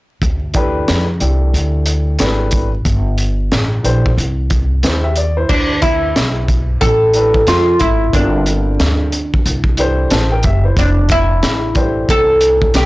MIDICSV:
0, 0, Header, 1, 5, 480
1, 0, Start_track
1, 0, Tempo, 659341
1, 158, Time_signature, 4, 2, 24, 8
1, 9359, End_track
2, 0, Start_track
2, 0, Title_t, "Upright piano"
2, 0, Program_c, 0, 0
2, 391, Note_on_c, 0, 52, 67
2, 397, Note_on_c, 0, 57, 65
2, 401, Note_on_c, 0, 62, 72
2, 406, Note_on_c, 0, 67, 73
2, 413, Note_on_c, 0, 71, 82
2, 750, Note_off_c, 0, 52, 0
2, 753, Note_off_c, 0, 57, 0
2, 755, Note_off_c, 0, 62, 0
2, 757, Note_off_c, 0, 67, 0
2, 761, Note_off_c, 0, 71, 0
2, 870, Note_on_c, 0, 52, 58
2, 874, Note_on_c, 0, 57, 57
2, 880, Note_on_c, 0, 62, 55
2, 882, Note_on_c, 0, 67, 58
2, 891, Note_on_c, 0, 69, 68
2, 1556, Note_off_c, 0, 52, 0
2, 1558, Note_off_c, 0, 57, 0
2, 1561, Note_off_c, 0, 62, 0
2, 1562, Note_off_c, 0, 67, 0
2, 1566, Note_off_c, 0, 69, 0
2, 1590, Note_on_c, 0, 52, 61
2, 1595, Note_on_c, 0, 57, 60
2, 1601, Note_on_c, 0, 62, 57
2, 1607, Note_on_c, 0, 67, 57
2, 1611, Note_on_c, 0, 71, 71
2, 1950, Note_off_c, 0, 52, 0
2, 1952, Note_off_c, 0, 57, 0
2, 1955, Note_off_c, 0, 62, 0
2, 1958, Note_off_c, 0, 67, 0
2, 1960, Note_off_c, 0, 71, 0
2, 2790, Note_on_c, 0, 52, 65
2, 2791, Note_on_c, 0, 57, 61
2, 2799, Note_on_c, 0, 62, 67
2, 2803, Note_on_c, 0, 67, 63
2, 2807, Note_on_c, 0, 72, 82
2, 2976, Note_off_c, 0, 52, 0
2, 2977, Note_off_c, 0, 57, 0
2, 2981, Note_off_c, 0, 62, 0
2, 2983, Note_off_c, 0, 67, 0
2, 2985, Note_off_c, 0, 72, 0
2, 3521, Note_on_c, 0, 72, 55
2, 3526, Note_on_c, 0, 64, 51
2, 3656, Note_off_c, 0, 72, 0
2, 3659, Note_off_c, 0, 64, 0
2, 3668, Note_on_c, 0, 76, 63
2, 3670, Note_on_c, 0, 67, 56
2, 3757, Note_off_c, 0, 67, 0
2, 3757, Note_off_c, 0, 76, 0
2, 3765, Note_on_c, 0, 74, 68
2, 3899, Note_off_c, 0, 74, 0
2, 3909, Note_on_c, 0, 72, 61
2, 3911, Note_on_c, 0, 64, 48
2, 4134, Note_off_c, 0, 72, 0
2, 4135, Note_off_c, 0, 64, 0
2, 5193, Note_on_c, 0, 52, 62
2, 5199, Note_on_c, 0, 57, 59
2, 5203, Note_on_c, 0, 62, 59
2, 5209, Note_on_c, 0, 67, 57
2, 5212, Note_on_c, 0, 71, 73
2, 5378, Note_off_c, 0, 52, 0
2, 5381, Note_off_c, 0, 57, 0
2, 5383, Note_off_c, 0, 62, 0
2, 5386, Note_off_c, 0, 67, 0
2, 5387, Note_off_c, 0, 71, 0
2, 5917, Note_on_c, 0, 50, 61
2, 5923, Note_on_c, 0, 55, 57
2, 5926, Note_on_c, 0, 60, 56
2, 5928, Note_on_c, 0, 65, 56
2, 5935, Note_on_c, 0, 70, 68
2, 6599, Note_off_c, 0, 50, 0
2, 6602, Note_off_c, 0, 55, 0
2, 6604, Note_off_c, 0, 60, 0
2, 6605, Note_off_c, 0, 65, 0
2, 6608, Note_off_c, 0, 70, 0
2, 7114, Note_on_c, 0, 52, 72
2, 7119, Note_on_c, 0, 57, 61
2, 7125, Note_on_c, 0, 62, 65
2, 7128, Note_on_c, 0, 67, 62
2, 7135, Note_on_c, 0, 72, 85
2, 7354, Note_off_c, 0, 72, 0
2, 7360, Note_on_c, 0, 81, 61
2, 7363, Note_off_c, 0, 67, 0
2, 7365, Note_on_c, 0, 72, 53
2, 7414, Note_off_c, 0, 52, 0
2, 7416, Note_off_c, 0, 57, 0
2, 7419, Note_off_c, 0, 62, 0
2, 7496, Note_off_c, 0, 81, 0
2, 7499, Note_off_c, 0, 72, 0
2, 7511, Note_on_c, 0, 79, 69
2, 7517, Note_on_c, 0, 70, 59
2, 7598, Note_off_c, 0, 79, 0
2, 7601, Note_off_c, 0, 70, 0
2, 7606, Note_on_c, 0, 76, 72
2, 7610, Note_on_c, 0, 67, 56
2, 7739, Note_off_c, 0, 76, 0
2, 7741, Note_off_c, 0, 67, 0
2, 7750, Note_on_c, 0, 72, 54
2, 7755, Note_on_c, 0, 64, 52
2, 7975, Note_off_c, 0, 72, 0
2, 7977, Note_off_c, 0, 64, 0
2, 8553, Note_on_c, 0, 52, 64
2, 8557, Note_on_c, 0, 55, 43
2, 8561, Note_on_c, 0, 62, 56
2, 8568, Note_on_c, 0, 67, 54
2, 8571, Note_on_c, 0, 72, 62
2, 8605, Note_on_c, 0, 57, 49
2, 8614, Note_off_c, 0, 55, 0
2, 9237, Note_off_c, 0, 52, 0
2, 9241, Note_off_c, 0, 62, 0
2, 9245, Note_off_c, 0, 67, 0
2, 9246, Note_off_c, 0, 72, 0
2, 9263, Note_off_c, 0, 57, 0
2, 9359, End_track
3, 0, Start_track
3, 0, Title_t, "Oud"
3, 0, Program_c, 1, 24
3, 3998, Note_on_c, 1, 62, 80
3, 4234, Note_off_c, 1, 62, 0
3, 4237, Note_on_c, 1, 64, 78
3, 4928, Note_off_c, 1, 64, 0
3, 4957, Note_on_c, 1, 69, 99
3, 5442, Note_off_c, 1, 69, 0
3, 5445, Note_on_c, 1, 65, 85
3, 5679, Note_off_c, 1, 65, 0
3, 5682, Note_on_c, 1, 64, 80
3, 5926, Note_on_c, 1, 62, 79
3, 5927, Note_off_c, 1, 64, 0
3, 6853, Note_off_c, 1, 62, 0
3, 7853, Note_on_c, 1, 62, 90
3, 8069, Note_off_c, 1, 62, 0
3, 8092, Note_on_c, 1, 64, 96
3, 8536, Note_off_c, 1, 64, 0
3, 8809, Note_on_c, 1, 69, 94
3, 9287, Note_off_c, 1, 69, 0
3, 9289, Note_on_c, 1, 67, 86
3, 9359, Note_off_c, 1, 67, 0
3, 9359, End_track
4, 0, Start_track
4, 0, Title_t, "Upright bass"
4, 0, Program_c, 2, 32
4, 158, Note_on_c, 2, 38, 91
4, 614, Note_off_c, 2, 38, 0
4, 648, Note_on_c, 2, 41, 75
4, 871, Note_off_c, 2, 41, 0
4, 882, Note_on_c, 2, 36, 77
4, 1108, Note_off_c, 2, 36, 0
4, 1118, Note_on_c, 2, 38, 84
4, 1574, Note_off_c, 2, 38, 0
4, 1601, Note_on_c, 2, 32, 80
4, 2056, Note_off_c, 2, 32, 0
4, 2081, Note_on_c, 2, 31, 97
4, 2535, Note_off_c, 2, 31, 0
4, 2562, Note_on_c, 2, 33, 79
4, 2788, Note_off_c, 2, 33, 0
4, 2797, Note_on_c, 2, 34, 75
4, 3025, Note_off_c, 2, 34, 0
4, 3040, Note_on_c, 2, 36, 101
4, 3495, Note_off_c, 2, 36, 0
4, 3518, Note_on_c, 2, 39, 80
4, 3974, Note_off_c, 2, 39, 0
4, 4004, Note_on_c, 2, 38, 85
4, 4457, Note_off_c, 2, 38, 0
4, 4485, Note_on_c, 2, 35, 76
4, 4938, Note_off_c, 2, 35, 0
4, 4964, Note_on_c, 2, 33, 86
4, 5417, Note_off_c, 2, 33, 0
4, 5438, Note_on_c, 2, 41, 81
4, 5666, Note_off_c, 2, 41, 0
4, 5688, Note_on_c, 2, 32, 90
4, 5911, Note_off_c, 2, 32, 0
4, 5923, Note_on_c, 2, 31, 89
4, 6377, Note_off_c, 2, 31, 0
4, 6402, Note_on_c, 2, 38, 81
4, 6856, Note_off_c, 2, 38, 0
4, 6885, Note_on_c, 2, 36, 98
4, 7338, Note_off_c, 2, 36, 0
4, 7362, Note_on_c, 2, 33, 84
4, 7588, Note_off_c, 2, 33, 0
4, 7602, Note_on_c, 2, 30, 85
4, 7828, Note_off_c, 2, 30, 0
4, 7837, Note_on_c, 2, 29, 103
4, 8294, Note_off_c, 2, 29, 0
4, 8321, Note_on_c, 2, 33, 78
4, 8776, Note_off_c, 2, 33, 0
4, 8800, Note_on_c, 2, 36, 89
4, 9255, Note_off_c, 2, 36, 0
4, 9278, Note_on_c, 2, 35, 84
4, 9359, Note_off_c, 2, 35, 0
4, 9359, End_track
5, 0, Start_track
5, 0, Title_t, "Drums"
5, 158, Note_on_c, 9, 36, 90
5, 159, Note_on_c, 9, 42, 63
5, 230, Note_off_c, 9, 36, 0
5, 232, Note_off_c, 9, 42, 0
5, 391, Note_on_c, 9, 42, 69
5, 398, Note_on_c, 9, 36, 88
5, 464, Note_off_c, 9, 42, 0
5, 471, Note_off_c, 9, 36, 0
5, 640, Note_on_c, 9, 42, 78
5, 642, Note_on_c, 9, 38, 93
5, 713, Note_off_c, 9, 42, 0
5, 715, Note_off_c, 9, 38, 0
5, 876, Note_on_c, 9, 42, 65
5, 949, Note_off_c, 9, 42, 0
5, 1123, Note_on_c, 9, 42, 74
5, 1195, Note_off_c, 9, 42, 0
5, 1352, Note_on_c, 9, 42, 72
5, 1424, Note_off_c, 9, 42, 0
5, 1592, Note_on_c, 9, 42, 90
5, 1602, Note_on_c, 9, 38, 95
5, 1665, Note_off_c, 9, 42, 0
5, 1675, Note_off_c, 9, 38, 0
5, 1827, Note_on_c, 9, 42, 66
5, 1839, Note_on_c, 9, 36, 84
5, 1900, Note_off_c, 9, 42, 0
5, 1912, Note_off_c, 9, 36, 0
5, 2076, Note_on_c, 9, 36, 94
5, 2076, Note_on_c, 9, 42, 74
5, 2148, Note_off_c, 9, 42, 0
5, 2149, Note_off_c, 9, 36, 0
5, 2313, Note_on_c, 9, 42, 75
5, 2386, Note_off_c, 9, 42, 0
5, 2560, Note_on_c, 9, 42, 76
5, 2562, Note_on_c, 9, 38, 99
5, 2633, Note_off_c, 9, 42, 0
5, 2635, Note_off_c, 9, 38, 0
5, 2800, Note_on_c, 9, 42, 65
5, 2873, Note_off_c, 9, 42, 0
5, 2954, Note_on_c, 9, 36, 89
5, 3027, Note_off_c, 9, 36, 0
5, 3045, Note_on_c, 9, 42, 85
5, 3118, Note_off_c, 9, 42, 0
5, 3277, Note_on_c, 9, 42, 73
5, 3281, Note_on_c, 9, 36, 94
5, 3349, Note_off_c, 9, 42, 0
5, 3354, Note_off_c, 9, 36, 0
5, 3516, Note_on_c, 9, 42, 82
5, 3527, Note_on_c, 9, 38, 93
5, 3589, Note_off_c, 9, 42, 0
5, 3600, Note_off_c, 9, 38, 0
5, 3753, Note_on_c, 9, 42, 68
5, 3826, Note_off_c, 9, 42, 0
5, 4000, Note_on_c, 9, 36, 95
5, 4003, Note_on_c, 9, 49, 78
5, 4073, Note_off_c, 9, 36, 0
5, 4075, Note_off_c, 9, 49, 0
5, 4237, Note_on_c, 9, 42, 76
5, 4241, Note_on_c, 9, 36, 95
5, 4310, Note_off_c, 9, 42, 0
5, 4314, Note_off_c, 9, 36, 0
5, 4484, Note_on_c, 9, 42, 85
5, 4485, Note_on_c, 9, 38, 96
5, 4557, Note_off_c, 9, 42, 0
5, 4558, Note_off_c, 9, 38, 0
5, 4720, Note_on_c, 9, 36, 88
5, 4720, Note_on_c, 9, 42, 72
5, 4793, Note_off_c, 9, 36, 0
5, 4793, Note_off_c, 9, 42, 0
5, 4962, Note_on_c, 9, 36, 87
5, 4965, Note_on_c, 9, 42, 79
5, 5034, Note_off_c, 9, 36, 0
5, 5038, Note_off_c, 9, 42, 0
5, 5194, Note_on_c, 9, 42, 68
5, 5267, Note_off_c, 9, 42, 0
5, 5346, Note_on_c, 9, 36, 89
5, 5419, Note_off_c, 9, 36, 0
5, 5436, Note_on_c, 9, 42, 96
5, 5447, Note_on_c, 9, 38, 97
5, 5509, Note_off_c, 9, 42, 0
5, 5520, Note_off_c, 9, 38, 0
5, 5674, Note_on_c, 9, 42, 68
5, 5684, Note_on_c, 9, 36, 85
5, 5747, Note_off_c, 9, 42, 0
5, 5757, Note_off_c, 9, 36, 0
5, 5921, Note_on_c, 9, 36, 91
5, 5922, Note_on_c, 9, 42, 84
5, 5994, Note_off_c, 9, 36, 0
5, 5995, Note_off_c, 9, 42, 0
5, 6158, Note_on_c, 9, 42, 75
5, 6231, Note_off_c, 9, 42, 0
5, 6404, Note_on_c, 9, 42, 87
5, 6405, Note_on_c, 9, 38, 93
5, 6477, Note_off_c, 9, 42, 0
5, 6478, Note_off_c, 9, 38, 0
5, 6642, Note_on_c, 9, 42, 67
5, 6715, Note_off_c, 9, 42, 0
5, 6798, Note_on_c, 9, 36, 91
5, 6870, Note_off_c, 9, 36, 0
5, 6884, Note_on_c, 9, 42, 80
5, 6957, Note_off_c, 9, 42, 0
5, 7016, Note_on_c, 9, 36, 80
5, 7089, Note_off_c, 9, 36, 0
5, 7115, Note_on_c, 9, 42, 77
5, 7188, Note_off_c, 9, 42, 0
5, 7356, Note_on_c, 9, 42, 84
5, 7366, Note_on_c, 9, 38, 109
5, 7429, Note_off_c, 9, 42, 0
5, 7439, Note_off_c, 9, 38, 0
5, 7591, Note_on_c, 9, 42, 67
5, 7602, Note_on_c, 9, 36, 87
5, 7664, Note_off_c, 9, 42, 0
5, 7675, Note_off_c, 9, 36, 0
5, 7838, Note_on_c, 9, 36, 96
5, 7839, Note_on_c, 9, 42, 80
5, 7911, Note_off_c, 9, 36, 0
5, 7912, Note_off_c, 9, 42, 0
5, 8072, Note_on_c, 9, 42, 79
5, 8079, Note_on_c, 9, 36, 96
5, 8145, Note_off_c, 9, 42, 0
5, 8152, Note_off_c, 9, 36, 0
5, 8320, Note_on_c, 9, 42, 85
5, 8321, Note_on_c, 9, 38, 95
5, 8392, Note_off_c, 9, 42, 0
5, 8394, Note_off_c, 9, 38, 0
5, 8553, Note_on_c, 9, 42, 70
5, 8558, Note_on_c, 9, 36, 85
5, 8626, Note_off_c, 9, 42, 0
5, 8631, Note_off_c, 9, 36, 0
5, 8800, Note_on_c, 9, 36, 93
5, 8801, Note_on_c, 9, 42, 86
5, 8872, Note_off_c, 9, 36, 0
5, 8874, Note_off_c, 9, 42, 0
5, 9032, Note_on_c, 9, 42, 77
5, 9105, Note_off_c, 9, 42, 0
5, 9185, Note_on_c, 9, 36, 81
5, 9257, Note_off_c, 9, 36, 0
5, 9274, Note_on_c, 9, 42, 90
5, 9285, Note_on_c, 9, 38, 101
5, 9347, Note_off_c, 9, 42, 0
5, 9358, Note_off_c, 9, 38, 0
5, 9359, End_track
0, 0, End_of_file